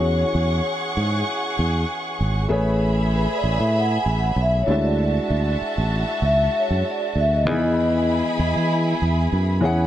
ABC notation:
X:1
M:4/4
L:1/16
Q:"Swing 16ths" 1/4=97
K:Emix
V:1 name="Violin section"
[Gfc']16 | [Geb]12- [Geb]2 [Fea]2- | [Fea]16 | [EGb]12- [EGb]2 [Gfb]2 |]
V:2 name="Vibraphone"
c4- c z8 z3 | z4 (3B2 d2 e2 (3f2 g2 f2 (3e2 c2 d2- | d4- d z3 e e c2 d2 e ^d- | ^d8- d z6 z |]
V:3 name="Grand piano"
[E,CFG]12- [E,CFG]2 z2 | [A,GBc]12- [A,GBc]2 [G,DEFe]2- | [G,DEFe]12- [G,DEFe]2 z2 | [^D,E,B,G^d]12- [D,E,B,Gd]2 [E,CGf]2 |]
V:4 name="Fingered electric bass" clef=bass
E,,2 E,,2 z2 G,,2 z2 E,,2 z2 G,,,2 | A,,,4- A,,, z A,,, A,,3 A,,,2 B,,,2 D,,2- | D,,2 D,,2 z A,,,2 z C,,2 z F,, z2 D,,2 | E,,4- E,, z E,, E,3 E,,2 F,,2 E,,2 |]